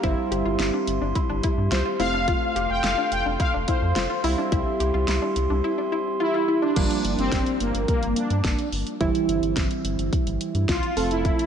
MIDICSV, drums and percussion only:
0, 0, Header, 1, 2, 480
1, 0, Start_track
1, 0, Tempo, 560748
1, 30, Time_signature, 4, 2, 24, 8
1, 9811, End_track
2, 0, Start_track
2, 0, Title_t, "Drums"
2, 30, Note_on_c, 9, 36, 114
2, 30, Note_on_c, 9, 42, 65
2, 115, Note_off_c, 9, 42, 0
2, 116, Note_off_c, 9, 36, 0
2, 272, Note_on_c, 9, 42, 78
2, 358, Note_off_c, 9, 42, 0
2, 509, Note_on_c, 9, 38, 125
2, 509, Note_on_c, 9, 42, 77
2, 594, Note_off_c, 9, 42, 0
2, 595, Note_off_c, 9, 38, 0
2, 749, Note_on_c, 9, 42, 81
2, 834, Note_off_c, 9, 42, 0
2, 988, Note_on_c, 9, 36, 88
2, 991, Note_on_c, 9, 42, 70
2, 1074, Note_off_c, 9, 36, 0
2, 1076, Note_off_c, 9, 42, 0
2, 1228, Note_on_c, 9, 42, 95
2, 1231, Note_on_c, 9, 36, 91
2, 1314, Note_off_c, 9, 42, 0
2, 1317, Note_off_c, 9, 36, 0
2, 1469, Note_on_c, 9, 42, 70
2, 1470, Note_on_c, 9, 38, 123
2, 1555, Note_off_c, 9, 38, 0
2, 1555, Note_off_c, 9, 42, 0
2, 1709, Note_on_c, 9, 46, 81
2, 1795, Note_off_c, 9, 46, 0
2, 1950, Note_on_c, 9, 36, 112
2, 1950, Note_on_c, 9, 42, 64
2, 2035, Note_off_c, 9, 42, 0
2, 2036, Note_off_c, 9, 36, 0
2, 2192, Note_on_c, 9, 42, 76
2, 2278, Note_off_c, 9, 42, 0
2, 2428, Note_on_c, 9, 38, 127
2, 2428, Note_on_c, 9, 42, 80
2, 2514, Note_off_c, 9, 38, 0
2, 2514, Note_off_c, 9, 42, 0
2, 2669, Note_on_c, 9, 42, 81
2, 2755, Note_off_c, 9, 42, 0
2, 2908, Note_on_c, 9, 36, 89
2, 2911, Note_on_c, 9, 42, 70
2, 2994, Note_off_c, 9, 36, 0
2, 2997, Note_off_c, 9, 42, 0
2, 3149, Note_on_c, 9, 42, 98
2, 3151, Note_on_c, 9, 36, 89
2, 3234, Note_off_c, 9, 42, 0
2, 3237, Note_off_c, 9, 36, 0
2, 3390, Note_on_c, 9, 38, 127
2, 3390, Note_on_c, 9, 42, 69
2, 3475, Note_off_c, 9, 38, 0
2, 3475, Note_off_c, 9, 42, 0
2, 3629, Note_on_c, 9, 46, 83
2, 3715, Note_off_c, 9, 46, 0
2, 3869, Note_on_c, 9, 42, 65
2, 3870, Note_on_c, 9, 36, 114
2, 3955, Note_off_c, 9, 36, 0
2, 3955, Note_off_c, 9, 42, 0
2, 4112, Note_on_c, 9, 42, 77
2, 4197, Note_off_c, 9, 42, 0
2, 4348, Note_on_c, 9, 38, 125
2, 4348, Note_on_c, 9, 42, 78
2, 4433, Note_off_c, 9, 42, 0
2, 4434, Note_off_c, 9, 38, 0
2, 4589, Note_on_c, 9, 42, 84
2, 4674, Note_off_c, 9, 42, 0
2, 5789, Note_on_c, 9, 42, 66
2, 5789, Note_on_c, 9, 49, 101
2, 5790, Note_on_c, 9, 36, 118
2, 5875, Note_off_c, 9, 36, 0
2, 5875, Note_off_c, 9, 42, 0
2, 5875, Note_off_c, 9, 49, 0
2, 5912, Note_on_c, 9, 42, 58
2, 5997, Note_off_c, 9, 42, 0
2, 6032, Note_on_c, 9, 42, 77
2, 6117, Note_off_c, 9, 42, 0
2, 6151, Note_on_c, 9, 42, 50
2, 6237, Note_off_c, 9, 42, 0
2, 6269, Note_on_c, 9, 36, 124
2, 6269, Note_on_c, 9, 38, 122
2, 6269, Note_on_c, 9, 42, 77
2, 6354, Note_off_c, 9, 42, 0
2, 6355, Note_off_c, 9, 36, 0
2, 6355, Note_off_c, 9, 38, 0
2, 6389, Note_on_c, 9, 42, 54
2, 6475, Note_off_c, 9, 42, 0
2, 6509, Note_on_c, 9, 42, 79
2, 6595, Note_off_c, 9, 42, 0
2, 6631, Note_on_c, 9, 42, 68
2, 6716, Note_off_c, 9, 42, 0
2, 6748, Note_on_c, 9, 36, 109
2, 6751, Note_on_c, 9, 42, 69
2, 6834, Note_off_c, 9, 36, 0
2, 6836, Note_off_c, 9, 42, 0
2, 6870, Note_on_c, 9, 42, 55
2, 6956, Note_off_c, 9, 42, 0
2, 6988, Note_on_c, 9, 42, 95
2, 7074, Note_off_c, 9, 42, 0
2, 7108, Note_on_c, 9, 42, 51
2, 7194, Note_off_c, 9, 42, 0
2, 7229, Note_on_c, 9, 36, 112
2, 7229, Note_on_c, 9, 38, 120
2, 7229, Note_on_c, 9, 42, 72
2, 7315, Note_off_c, 9, 36, 0
2, 7315, Note_off_c, 9, 38, 0
2, 7315, Note_off_c, 9, 42, 0
2, 7349, Note_on_c, 9, 42, 49
2, 7435, Note_off_c, 9, 42, 0
2, 7469, Note_on_c, 9, 46, 79
2, 7554, Note_off_c, 9, 46, 0
2, 7589, Note_on_c, 9, 42, 60
2, 7675, Note_off_c, 9, 42, 0
2, 7709, Note_on_c, 9, 42, 66
2, 7710, Note_on_c, 9, 36, 115
2, 7795, Note_off_c, 9, 36, 0
2, 7795, Note_off_c, 9, 42, 0
2, 7832, Note_on_c, 9, 42, 60
2, 7917, Note_off_c, 9, 42, 0
2, 7952, Note_on_c, 9, 42, 75
2, 8037, Note_off_c, 9, 42, 0
2, 8071, Note_on_c, 9, 42, 48
2, 8157, Note_off_c, 9, 42, 0
2, 8188, Note_on_c, 9, 38, 122
2, 8188, Note_on_c, 9, 42, 78
2, 8189, Note_on_c, 9, 36, 123
2, 8274, Note_off_c, 9, 38, 0
2, 8274, Note_off_c, 9, 42, 0
2, 8275, Note_off_c, 9, 36, 0
2, 8309, Note_on_c, 9, 42, 53
2, 8394, Note_off_c, 9, 42, 0
2, 8429, Note_on_c, 9, 42, 82
2, 8514, Note_off_c, 9, 42, 0
2, 8551, Note_on_c, 9, 42, 68
2, 8637, Note_off_c, 9, 42, 0
2, 8668, Note_on_c, 9, 36, 114
2, 8671, Note_on_c, 9, 42, 70
2, 8754, Note_off_c, 9, 36, 0
2, 8757, Note_off_c, 9, 42, 0
2, 8790, Note_on_c, 9, 42, 55
2, 8876, Note_off_c, 9, 42, 0
2, 8909, Note_on_c, 9, 42, 98
2, 8995, Note_off_c, 9, 42, 0
2, 9029, Note_on_c, 9, 42, 51
2, 9115, Note_off_c, 9, 42, 0
2, 9150, Note_on_c, 9, 36, 117
2, 9150, Note_on_c, 9, 38, 126
2, 9150, Note_on_c, 9, 42, 71
2, 9235, Note_off_c, 9, 36, 0
2, 9235, Note_off_c, 9, 38, 0
2, 9235, Note_off_c, 9, 42, 0
2, 9270, Note_on_c, 9, 42, 49
2, 9355, Note_off_c, 9, 42, 0
2, 9389, Note_on_c, 9, 46, 82
2, 9475, Note_off_c, 9, 46, 0
2, 9510, Note_on_c, 9, 42, 56
2, 9596, Note_off_c, 9, 42, 0
2, 9629, Note_on_c, 9, 42, 63
2, 9630, Note_on_c, 9, 36, 117
2, 9715, Note_off_c, 9, 36, 0
2, 9715, Note_off_c, 9, 42, 0
2, 9752, Note_on_c, 9, 42, 60
2, 9811, Note_off_c, 9, 42, 0
2, 9811, End_track
0, 0, End_of_file